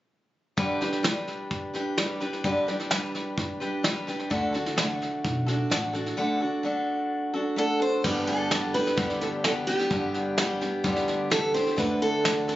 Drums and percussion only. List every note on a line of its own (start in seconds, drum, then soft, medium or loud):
0.58 kick medium
0.58 snare soft
0.81 snare soft
0.92 snare soft
1.04 snare medium
1.04 hi-hat pedal medium
1.27 snare soft
1.51 kick loud
1.51 snare soft
1.74 snare soft
1.98 snare loud
1.98 hi-hat pedal medium
2.21 snare soft
2.33 snare soft
2.44 kick medium
2.44 snare soft
2.68 snare soft
2.79 snare soft
2.91 snare loud
2.91 hi-hat pedal medium
3.15 snare soft
3.38 kick loud
3.38 snare soft
3.61 snare soft
3.84 snare medium
3.84 hi-hat pedal medium
4.08 snare soft
4.19 snare soft
4.31 kick medium
4.31 snare soft
4.54 snare soft
4.66 snare soft
4.78 snare loud
4.78 hi-hat pedal medium
5.02 snare soft
5.25 kick medium
5.25 snare soft
5.48 snare soft
5.71 snare medium
5.71 hi-hat pedal medium
5.94 snare soft
6.06 snare soft
8.04 kick medium
8.04 snare soft
8.04 crash medium
8.28 snare soft
8.51 snare loud
8.51 hi-hat pedal medium
8.75 snare soft
8.87 snare soft
8.98 kick loud
8.98 snare soft
9.10 snare soft
9.21 snare soft
9.44 snare loud
9.44 hi-hat pedal medium
9.68 snare soft
9.79 snare soft
9.91 kick medium
9.91 snare soft
10.14 snare soft
10.38 snare loud
10.38 hi-hat pedal medium
10.61 snare soft
10.84 kick loud
10.84 snare soft
10.96 snare soft
11.08 snare soft
11.31 snare loud
11.31 hi-hat pedal medium
11.55 snare soft
11.67 snare soft
11.78 kick medium
11.78 snare soft
12.02 snare soft
12.25 snare loud
12.25 hi-hat pedal medium
12.48 snare soft